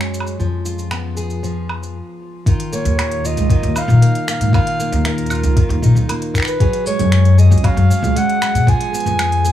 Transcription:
0.00 0.37 F#2 medium
0.00 0.39 F#3 medium
0.00 0.91 G#3 medium
0.00 1.95 G#3 medium
0.00 0.45 C#4 medium
0.00 1.22 C#4 medium
0.00 1.17 G#4 medium
0.00 1.94 G#4 medium
0.00 finger snap medium
0.14 shaker medium
0.20 low woodblock medium
0.27 shaker soft
0.39 1.95 F2 medium
0.39 1.43 F3 medium
0.39 1.95 F3 medium
0.39 shaker soft
0.65 2.45 F4 medium
0.65 shaker medium
0.79 shaker soft
0.91 1.95 B3 medium
0.91 finger snap medium
0.91 low woodblock medium
0.91 shaker soft
1.17 1.95 B3 medium
1.17 1.95 G#4 medium
1.17 shaker medium
1.30 shaker soft
1.43 2.45 F3 medium
1.43 shaker soft
1.69 low woodblock medium
1.83 shaker soft
2.46 3.50 D#3 medium
2.46 3.24 F4 medium
2.46 kick loud
2.46 closed hi-hat medium
2.46 shaker soft
2.55 7.44 A#2 medium
2.60 closed hi-hat soft
2.73 2.98 A#3 medium
2.73 3.27 C#5 loud
2.73 shaker medium
2.85 3.34 D#2 loud
2.85 closed hi-hat soft
2.85 shaker soft
2.99 4.00 A#3 medium
2.99 finger snap medium
2.99 closed hi-hat medium
2.99 low woodblock medium
2.99 shaker soft
3.11 closed hi-hat soft
3.25 4.53 F4 medium
3.25 3.80 D#5 loud
3.25 shaker medium
3.37 3.48 C#2 medium
3.37 closed hi-hat soft
3.37 shaker soft
3.50 4.53 D#3 medium
3.50 kick loud
3.50 closed hi-hat medium
3.50 shaker soft
3.58 7.35 D#4 medium
3.58 7.44 A#5 medium
3.63 3.74 D#2 medium
3.63 closed hi-hat soft
3.76 5.82 D#4 medium
3.76 4.29 F5 loud
3.76 low woodblock medium
3.76 shaker medium
3.88 3.99 A#1 loud
3.88 shaker soft
4.02 4.27 A#3 medium
4.02 closed hi-hat medium
4.02 shaker soft
4.15 closed hi-hat soft
4.28 4.79 A#3 medium
4.28 4.53 F5 loud
4.28 finger snap medium
4.28 shaker medium
4.40 4.51 G#2 medium
4.40 closed hi-hat soft
4.40 shaker soft
4.53 5.56 D#3 medium
4.53 5.30 F4 medium
4.53 5.08 F5 loud
4.53 kick loud
4.53 closed hi-hat medium
4.53 low woodblock medium
4.53 shaker soft
4.67 closed hi-hat soft
4.80 5.04 A#3 medium
4.80 shaker medium
4.92 5.41 D#2 loud
4.92 closed hi-hat soft
4.92 shaker soft
5.05 6.08 A#3 medium
5.05 5.84 A#4 medium
5.05 finger snap medium
5.05 closed hi-hat medium
5.05 shaker soft
5.18 closed hi-hat soft
5.26 closed hi-hat soft
5.26 low woodblock medium
5.31 6.60 F4 medium
5.31 shaker medium
5.35 closed hi-hat soft
5.43 5.55 C#2 medium
5.43 closed hi-hat soft
5.43 shaker soft
5.57 6.60 D#3 medium
5.57 kick loud
5.57 closed hi-hat medium
5.57 shaker soft
5.69 5.80 D#2 loud
5.69 closed hi-hat soft
5.82 5.93 A#1 medium
5.82 6.66 D#4 medium
5.82 shaker medium
5.95 6.06 C#2 medium
5.95 shaker soft
6.09 6.35 A#3 medium
6.09 closed hi-hat medium
6.09 low woodblock medium
6.09 shaker soft
6.22 closed hi-hat soft
6.34 6.83 B4 medium
6.34 finger snap soft
6.34 kick medium
6.34 shaker medium
6.38 finger snap soft
6.40 finger snap soft
6.42 finger snap medium
6.45 finger snap medium
6.45 closed hi-hat soft
6.45 shaker soft
6.60 7.63 F#3 medium
6.60 8.68 F#3 medium
6.60 7.37 G#4 medium
6.60 kick loud
6.60 closed hi-hat medium
6.60 shaker soft
6.72 9.52 G#3 medium
6.72 closed hi-hat soft
6.85 7.12 G#3 medium
6.85 9.50 C#4 medium
6.85 7.40 C#5 loud
6.85 shaker medium
6.99 7.48 F#2 loud
6.99 closed hi-hat soft
6.99 shaker soft
7.12 8.15 G#3 medium
7.12 finger snap medium
7.12 closed hi-hat medium
7.12 shaker soft
7.25 closed hi-hat soft
7.38 8.67 G#4 medium
7.38 7.66 D#5 loud
7.38 shaker medium
7.51 7.62 C#2 medium
7.51 9.52 G#4 loud
7.51 shaker soft
7.58 closed hi-hat soft
7.64 8.67 F#3 loud
7.64 8.19 F5 loud
7.64 kick loud
7.64 closed hi-hat medium
7.64 low woodblock medium
7.77 7.88 F#2 medium
7.77 closed hi-hat soft
7.90 8.73 C#4 medium
7.90 shaker medium
8.03 8.13 C#2 loud
8.03 shaker soft
8.16 8.41 G#3 medium
8.16 8.71 F#5 loud
8.16 closed hi-hat medium
8.16 shaker soft
8.29 closed hi-hat soft
8.42 8.93 G#3 medium
8.42 finger snap medium
8.42 low woodblock medium
8.42 shaker medium
8.55 8.65 B2 medium
8.55 closed hi-hat soft
8.55 shaker soft
8.67 9.52 F3 medium
8.67 9.44 G#4 medium
8.67 9.52 G#5 loud
8.67 kick loud
8.67 closed hi-hat medium
8.67 shaker soft
8.81 closed hi-hat soft
8.93 9.52 B3 medium
8.93 9.18 B3 medium
8.93 shaker medium
9.00 closed hi-hat soft
9.06 9.52 F2 medium
9.06 shaker soft
9.19 9.52 B3 medium
9.19 finger snap medium
9.19 closed hi-hat medium
9.19 low woodblock medium
9.19 shaker soft
9.32 closed hi-hat soft
9.45 9.52 G#4 medium
9.45 shaker medium

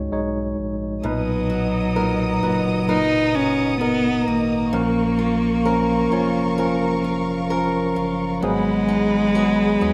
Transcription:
0.00 0.12 G#3 medium
0.00 0.12 D#4 medium
0.00 1.06 F#4 medium
0.00 0.13 C#5 medium
0.12 0.55 B1 medium
0.12 1.00 G#3 medium
0.12 1.00 D#4 medium
0.12 1.00 C#5 medium
0.58 1.01 A#1 medium
1.03 2.39 B1 medium
1.03 1.92 A#2 medium
1.03 4.72 B2 medium
1.03 2.91 F#3 medium
1.03 1.92 D#4 medium
1.03 1.93 B4 medium
1.03 4.70 D#5 medium
1.03 4.70 A#5 soft
1.03 4.70 D#6 medium
1.50 2.41 F#4 soft
1.95 2.40 A#2 medium
1.95 2.40 D#4 medium
1.95 2.88 A#4 soft
1.95 2.40 B4 medium
2.42 4.23 F#1 medium
2.42 2.87 A#2 medium
2.42 2.87 D#4 medium
2.42 3.33 F#4 soft
2.42 2.87 B4 medium
2.88 3.76 A#2 medium
2.88 3.77 D#4 medium
2.88 3.36 D#4 medium
2.88 3.80 A#4 medium
2.88 3.77 B4 medium
3.34 3.79 C#4 medium
3.34 4.26 F#4 soft
3.80 4.28 B3 medium
3.80 4.69 D#4 soft
3.80 5.65 A#4 medium
3.80 4.69 A#4 medium
3.80 4.69 D#5 medium
4.27 4.70 G#1 medium
4.27 7.04 A#3 medium
4.27 4.83 F#4 soft
4.73 6.08 A#1 medium
4.73 8.42 A#2 medium
4.73 5.61 F3 medium
4.73 5.61 C#4 medium
4.73 8.39 A#4 medium
4.73 5.62 A#4 medium
4.73 8.40 F5 soft
4.73 8.40 C#6 medium
5.19 6.11 F4 soft
5.65 6.10 F3 medium
5.65 6.10 C#4 medium
5.65 6.57 A#4 medium
5.65 6.10 A#4 medium
6.12 7.93 F1 medium
6.12 6.56 F3 medium
6.12 6.56 C#4 medium
6.12 7.03 F4 soft
6.12 6.56 C#5 medium
6.58 7.46 F3 medium
6.58 7.47 C#4 medium
6.58 7.49 A#4 medium
6.58 7.47 A#4 medium
7.04 7.95 F4 soft
7.50 8.39 F3 medium
7.50 8.39 C#4 medium
7.50 8.52 A#4 medium
7.50 8.39 A#4 medium
7.96 8.40 F#1 medium
7.96 8.52 F4 medium
8.42 9.77 G#1 loud
8.42 9.93 G#2 medium
8.42 9.31 F#3 medium
8.42 9.93 G#3 medium
8.42 9.31 B3 medium
8.42 9.93 G#4 medium
8.42 9.31 G#4 loud
8.42 9.93 F#5 medium
8.42 9.93 B5 medium
8.88 9.80 D#4 soft
9.35 9.79 F#3 medium
9.35 9.79 B3 medium
9.35 9.93 G#4 medium
9.35 9.80 G#4 medium
9.81 9.93 D#2 medium
9.81 9.93 F#3 medium
9.81 9.93 B3 medium
9.81 9.93 D#4 soft
9.81 9.93 G#4 medium

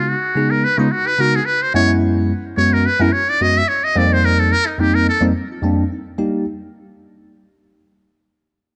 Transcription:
0.00 0.14 C#3 medium
0.00 0.14 G#3 medium
0.00 0.14 B3 medium
0.00 0.14 D#4 medium
0.00 0.11 F4 medium
0.00 0.14 F#4 medium
0.09 0.53 F#4 medium
0.35 0.64 C#3 medium
0.35 0.64 G#3 medium
0.35 0.64 B3 medium
0.35 0.65 D#4 medium
0.35 0.65 G#4 medium
0.51 0.66 A#4 medium
0.65 0.80 B4 medium
0.78 0.87 C#3 medium
0.78 0.87 G#3 medium
0.78 0.87 B3 medium
0.78 0.87 D#4 medium
0.78 0.93 D#4 medium
0.78 0.88 F4 loud
0.91 0.98 D#4 soft
0.91 1.08 F#4 medium
0.91 1.00 F#4 soft
1.05 1.12 D#4 soft
1.05 1.13 F#4 soft
1.05 1.22 B4 medium
1.18 1.38 C#3 medium
1.18 1.39 G#3 medium
1.18 1.39 B3 medium
1.18 1.39 D#4 medium
1.18 1.39 F#4 medium
1.18 1.37 A#4 medium
1.36 1.47 G#4 medium
1.46 1.55 F#4 soft
1.46 1.64 B4 medium
1.62 1.74 C5 loud
1.74 2.31 F#2 loud
1.74 2.31 G#3 loud
1.74 2.31 B3 medium
1.74 2.32 C#4 medium
1.74 2.32 E4 loud
1.74 1.92 C#5 loud
2.57 2.86 F#2 medium
2.57 2.86 G#3 medium
2.57 2.86 B3 medium
2.57 2.86 C#4 medium
2.57 2.87 F#4 medium
2.57 2.75 C#5 loud
2.73 2.88 A#4 medium
2.86 3.03 B4 loud
3.00 3.09 F#2 medium
3.00 3.09 G#3 medium
3.00 3.09 B3 medium
3.00 3.09 C#4 medium
3.00 3.10 E4 loud
3.00 3.14 A#4 medium
3.13 3.20 C#4 soft
3.13 3.21 F#4 soft
3.13 3.31 C#5 medium
3.27 3.34 C#4 soft
3.27 3.35 D#4 soft
3.27 3.44 D5 medium
3.40 3.60 F#2 medium
3.40 3.60 G#3 medium
3.40 3.61 B3 medium
3.40 3.61 C#4 medium
3.40 3.61 F#4 medium
3.40 3.59 D#5 loud
3.58 3.70 E5 loud
3.69 3.77 E4 soft
3.69 3.86 C#5 medium
3.84 3.99 D#5 loud
3.95 4.52 F2 loud
3.95 4.53 G3 medium
3.95 4.53 A#3 medium
3.95 4.53 C4 medium
3.95 4.53 D#4 loud
3.95 4.15 D5 medium
4.13 4.27 C5 loud
4.25 4.41 A#4 loud
4.40 4.54 A4 medium
4.52 4.68 A#4 loud
4.67 4.82 D#4 medium
4.79 5.07 F2 medium
4.79 5.08 G3 medium
4.79 5.08 A#3 medium
4.79 5.08 C4 medium
4.79 5.08 D#4 medium
4.79 4.96 G4 loud
4.95 5.08 A#4 loud
5.09 5.25 A4 medium
5.20 5.30 F2 loud
5.20 5.31 G3 medium
5.20 5.31 A#3 medium
5.20 5.31 C4 medium
5.20 5.31 D#4 loud
5.35 5.42 C4 soft
5.35 5.43 D4 soft
5.50 5.56 C4 soft
5.50 5.57 F4 soft
5.62 5.82 F2 medium
5.62 5.82 G3 medium
5.62 5.82 A#3 medium
5.62 5.83 C4 medium
5.62 5.83 D4 medium
5.90 5.98 C4 soft
5.90 5.99 D#4 soft
6.18 6.44 G3 medium
6.18 6.44 A#3 medium
6.18 6.44 D#4 medium
6.18 6.44 G4 medium

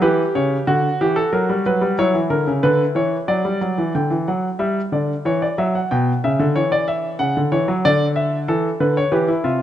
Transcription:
0.02 0.22 E3 medium
0.02 0.65 G4 medium
0.02 0.22 B4 medium
0.35 0.55 C#3 medium
0.35 0.55 C#5 medium
0.67 0.87 D3 medium
0.67 1.93 F#4 medium
1.01 1.21 E3 medium
1.01 1.16 G4 medium
1.16 1.32 A4 medium
1.33 1.48 F#3 medium
1.33 1.53 A#4 medium
1.49 1.65 G3 medium
1.66 1.81 F#3 medium
1.66 1.86 B4 medium
1.81 1.97 G3 medium
1.98 2.14 F#3 medium
1.98 3.91 E4 medium
1.98 2.18 C#5 medium
2.14 2.30 E3 medium
2.30 2.46 D3 medium
2.30 2.50 A#4 medium
2.47 2.62 C#3 medium
2.63 2.83 D3 medium
2.63 2.83 B4 medium
2.95 3.15 E3 medium
2.95 3.16 C#5 medium
3.28 3.44 F#3 medium
3.28 3.92 D5 medium
3.45 3.61 G3 medium
3.61 3.77 F#3 medium
3.78 3.94 E3 medium
3.95 4.10 D3 medium
3.95 4.15 G5 medium
4.10 4.26 E3 medium
4.28 4.48 F#3 medium
4.28 4.48 F#5 medium
4.59 4.79 G3 medium
4.59 4.79 E5 medium
4.92 5.12 D3 medium
4.92 5.12 D5 medium
5.25 5.45 E3 medium
5.25 5.41 C#5 medium
5.42 5.57 D5 medium
5.58 5.78 F#3 medium
5.58 5.73 E5 medium
5.75 5.90 F#5 medium
5.91 6.11 B2 medium
5.91 6.11 G5 medium
6.24 6.39 C#3 medium
6.24 6.43 E5 medium
6.39 6.55 D3 medium
6.56 7.18 E3 medium
6.56 6.71 C#5 medium
6.72 6.87 D5 medium
6.88 7.07 E5 medium
7.19 7.35 C#3 medium
7.19 7.39 F#5 medium
7.37 7.52 D3 medium
7.52 7.67 E3 medium
7.52 7.72 C#5 medium
7.68 7.83 F#3 medium
7.85 8.47 D3 medium
7.85 8.04 D5 loud
8.16 8.36 E5 medium
8.48 8.68 E3 medium
8.48 8.68 A4 medium
8.80 9.00 D3 medium
8.80 8.95 B4 medium
8.97 9.12 C#5 medium
9.12 9.31 E3 medium
9.12 9.27 G4 medium
9.12 9.31 B4 medium
9.28 9.43 E4 medium
9.44 9.62 C3 medium
9.44 9.62 F4 medium
9.44 9.62 E5 medium

